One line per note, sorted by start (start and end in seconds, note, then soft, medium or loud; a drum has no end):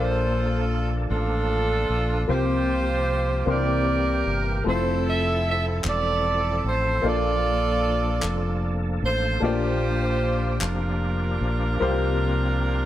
0.00 1.06 A#1 medium
0.00 1.06 A#2 medium
0.00 3.43 F3 medium
0.00 2.24 A#3 medium
0.00 4.64 A#3 medium
0.00 2.24 D4 medium
0.00 2.25 D4 medium
0.00 0.93 F4 medium
0.00 2.25 F4 medium
0.00 0.93 A4 medium
0.00 2.24 A4 medium
0.00 2.26 A4 medium
0.00 0.66 C5 loud
0.00 2.26 D5 medium
1.10 1.85 A1 medium
1.10 2.25 D4 medium
1.10 2.25 F4 medium
1.10 2.25 A4 loud
1.89 2.25 A#1 medium
2.28 3.43 C2 loud
2.28 3.43 C3 medium
2.28 3.45 A#3 medium
2.28 3.45 C4 medium
2.28 3.47 C4 medium
2.28 3.47 F4 medium
2.28 3.44 F4 medium
2.28 3.46 G4 medium
2.28 4.64 G4 medium
2.28 3.44 G4 medium
2.28 3.47 C5 medium
2.28 3.48 C5 loud
3.46 4.22 C2 loud
3.46 4.62 C3 medium
3.46 4.65 E3 medium
3.46 4.65 A#3 medium
3.46 4.64 C4 medium
3.46 7.01 C4 medium
3.46 3.53 D4 soft
3.46 4.66 G4 medium
3.46 4.63 G4 medium
3.46 4.63 A#4 medium
3.46 4.66 C5 medium
3.46 4.38 D5 loud
3.53 4.65 E4 medium
4.26 4.63 G1 medium
4.64 5.81 F1 loud
4.64 7.01 F3 medium
4.64 9.39 F3 medium
4.64 6.99 A3 medium
4.64 7.00 C4 medium
4.64 7.00 E4 medium
4.64 7.02 E4 medium
4.64 9.39 A4 medium
4.64 5.82 A4 medium
4.68 5.82 E4 medium
4.68 7.01 C5 medium
4.68 5.05 C5 loud
5.09 5.47 E5 loud
5.50 5.66 E5 loud
5.84 6.60 E1 medium
5.84 7.01 A4 medium
5.84 clap loud
5.89 6.62 D5 loud
6.64 7.01 A1 medium
6.69 7.06 C5 medium
7.02 8.19 A#1 loud
7.02 8.19 A#2 medium
7.02 9.37 A#3 medium
7.02 12.85 A#3 medium
7.02 9.38 D4 medium
7.02 11.78 D4 medium
7.02 9.38 F4 medium
7.02 8.72 F4 medium
7.02 9.39 A4 medium
7.06 8.73 A4 medium
7.06 9.39 D5 medium
7.06 8.78 D5 loud
8.22 8.98 F1 medium
8.22 clap loud
9.02 9.39 A1 medium
9.02 9.41 C5 loud
9.40 10.57 A#1 loud
9.40 10.58 A#2 medium
9.40 12.85 F3 medium
9.40 9.48 A3 medium
9.40 11.77 D4 medium
9.40 11.77 F4 medium
9.40 10.59 F4 medium
9.40 11.78 G4 medium
9.40 12.85 G4 medium
9.40 10.59 G4 medium
9.44 11.78 A#3 medium
9.44 10.59 C5 loud
9.44 11.78 D5 medium
10.61 11.37 F1 loud
10.61 12.85 D4 medium
10.61 12.85 F4 medium
10.61 clap loud
10.65 12.85 A#4 loud
11.41 11.78 A#1 medium
11.80 12.85 C2 medium
11.80 12.85 C3 medium
11.80 12.85 A#3 medium
11.80 12.85 C4 medium
11.80 11.88 E4 medium
11.80 12.85 G4 medium
11.80 12.85 C5 medium
11.88 12.85 F4 medium